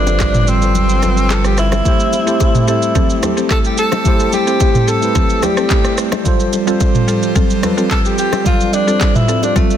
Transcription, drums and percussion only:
0.07 low bongo, shaker
0.20 kick, clap, high bongo, shaker
0.34 mid tom, shaker
0.47 shaker
0.62 shaker
0.75 low conga, shaker
0.89 shaker
1.03 cross-stick, low bongo, low conga, shaker
1.17 shaker
1.30 clap, high bongo, shaker
1.45 cross-stick, shaker
1.58 cross-stick, shaker
1.72 cross-stick, high bongo, low bongo, shaker
1.85 kick, low conga, shaker
2.00 shaker
2.13 low bongo, shaker
2.27 shaker
2.40 kick, high bongo, shaker
2.55 mid tom, shaker
2.68 shaker
2.82 shaker
2.95 kick, low conga, shaker
3.10 shaker
3.23 cross-stick, low bongo, low conga, shaker
3.37 shaker
3.50 kick, clap, high bongo, shaker
3.65 shaker
3.78 shaker
3.92 cross-stick, high bongo, low bongo, shaker
4.05 kick, low conga, shaker
4.20 shaker
4.33 low bongo, shaker
4.47 shaker
4.60 kick, high bongo, shaker
4.75 mid tom, shaker
4.88 shaker
5.02 shaker
5.15 kick, low conga, shaker
5.30 shaker
5.43 cross-stick, low bongo, low conga, shaker
5.57 cross-stick, shaker
5.70 kick, clap, high bongo, shaker
5.84 cross-stick, shaker
5.98 cross-stick, shaker
6.12 cross-stick, high bongo, low bongo, shaker
6.25 kick, low conga, shaker
6.40 shaker
6.53 low bongo, shaker
6.67 shaker
6.80 kick, high bongo, shaker
6.95 mid tom, shaker
7.08 shaker
7.23 shaker
7.36 kick, low conga, shaker
7.50 shaker
7.63 cross-stick, low bongo, low conga, shaker
7.78 shaker
7.91 kick, clap, high bongo, shaker
8.05 shaker
8.18 shaker
8.33 cross-stick, high bongo, low bongo, shaker
8.46 kick, low conga, shaker
8.61 shaker
8.73 low bongo, shaker
8.88 shaker
9.01 kick, clap, high bongo, shaker
9.15 mid tom, shaker
9.29 shaker
9.43 high bongo, shaker
9.56 kick, low conga, shaker
9.70 shaker

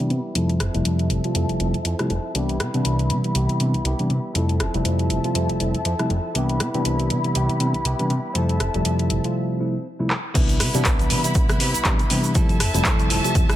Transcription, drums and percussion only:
0.10 closed hi-hat
0.35 closed hi-hat
0.49 closed hi-hat
0.60 cross-stick, closed hi-hat
0.74 closed hi-hat
0.85 closed hi-hat
0.99 closed hi-hat
1.10 closed hi-hat
1.24 closed hi-hat
1.35 closed hi-hat
1.49 closed hi-hat
1.60 closed hi-hat
1.74 closed hi-hat
1.85 closed hi-hat
1.99 cross-stick, closed hi-hat
2.10 closed hi-hat
2.35 closed hi-hat
2.49 closed hi-hat
2.60 cross-stick, closed hi-hat
2.74 closed hi-hat
2.85 closed hi-hat
2.99 closed hi-hat
3.10 closed hi-hat
3.24 closed hi-hat
3.35 closed hi-hat
3.49 closed hi-hat
3.60 closed hi-hat
3.74 closed hi-hat
3.85 closed hi-hat
3.99 closed hi-hat
4.10 closed hi-hat
4.24 shaker
4.35 closed hi-hat
4.49 closed hi-hat
4.60 cross-stick, closed hi-hat
4.74 closed hi-hat
4.85 closed hi-hat
4.99 closed hi-hat
5.10 closed hi-hat
5.24 closed hi-hat
5.35 closed hi-hat
5.49 closed hi-hat
5.60 closed hi-hat
5.74 closed hi-hat
5.85 closed hi-hat
5.99 cross-stick, closed hi-hat
6.10 closed hi-hat
6.24 shaker
6.35 closed hi-hat
6.49 closed hi-hat
6.60 cross-stick, closed hi-hat
6.74 closed hi-hat
6.85 closed hi-hat
6.99 closed hi-hat
7.10 closed hi-hat
7.24 closed hi-hat
7.35 closed hi-hat
7.49 closed hi-hat
7.60 closed hi-hat
7.74 closed hi-hat
7.85 closed hi-hat
7.99 closed hi-hat
8.10 closed hi-hat
8.24 shaker
8.35 closed hi-hat
8.49 closed hi-hat
8.60 cross-stick, closed hi-hat
8.74 closed hi-hat, shaker
8.85 closed hi-hat
8.99 closed hi-hat
9.10 closed hi-hat
9.24 closed hi-hat, shaker
10.10 clap
10.35 kick, closed hi-hat, crash, shaker
10.49 closed hi-hat, shaker
10.60 cross-stick, open hi-hat, shaker
10.74 closed hi-hat, shaker
10.85 kick, clap, closed hi-hat, shaker
10.99 closed hi-hat, shaker
11.10 open hi-hat, shaker
11.24 closed hi-hat, shaker
11.34 kick, closed hi-hat, shaker
11.49 cross-stick, closed hi-hat, shaker
11.60 open hi-hat, shaker
11.74 closed hi-hat, shaker
11.85 kick, clap, closed hi-hat, shaker
11.99 closed hi-hat, shaker
12.10 open hi-hat, shaker
12.23 shaker
12.25 shaker
12.35 kick, closed hi-hat, shaker
12.49 closed hi-hat, shaker
12.60 cross-stick, open hi-hat, shaker
12.74 closed hi-hat, shaker
12.85 kick, clap, closed hi-hat, shaker
12.99 closed hi-hat, shaker
13.10 open hi-hat, shaker
13.24 closed hi-hat, shaker
13.35 kick, closed hi-hat, shaker
13.49 cross-stick, closed hi-hat, shaker

